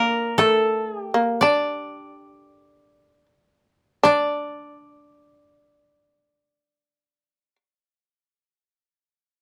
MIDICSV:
0, 0, Header, 1, 3, 480
1, 0, Start_track
1, 0, Tempo, 1010101
1, 669, Time_signature, 2, 2, 24, 8
1, 669, Tempo, 1188119
1, 1149, Tempo, 1442308
1, 1629, Tempo, 1542416
1, 2109, Tempo, 1466993
1, 3363, End_track
2, 0, Start_track
2, 0, Title_t, "Koto"
2, 0, Program_c, 0, 107
2, 0, Note_on_c, 0, 70, 82
2, 0, Note_on_c, 0, 74, 88
2, 180, Note_on_c, 0, 69, 79
2, 209, Note_off_c, 0, 70, 0
2, 423, Note_off_c, 0, 69, 0
2, 423, Note_on_c, 0, 68, 79
2, 480, Note_off_c, 0, 68, 0
2, 480, Note_on_c, 0, 67, 79
2, 486, Note_off_c, 0, 74, 0
2, 670, Note_on_c, 0, 74, 67
2, 1022, Note_off_c, 0, 67, 0
2, 1366, Note_off_c, 0, 74, 0
2, 1632, Note_on_c, 0, 74, 59
2, 2760, Note_off_c, 0, 74, 0
2, 3363, End_track
3, 0, Start_track
3, 0, Title_t, "Shamisen"
3, 0, Program_c, 1, 106
3, 0, Note_on_c, 1, 58, 65
3, 171, Note_off_c, 1, 58, 0
3, 185, Note_on_c, 1, 57, 64
3, 526, Note_off_c, 1, 57, 0
3, 543, Note_on_c, 1, 58, 62
3, 660, Note_off_c, 1, 58, 0
3, 676, Note_on_c, 1, 62, 66
3, 1369, Note_off_c, 1, 62, 0
3, 1628, Note_on_c, 1, 62, 72
3, 2755, Note_off_c, 1, 62, 0
3, 3363, End_track
0, 0, End_of_file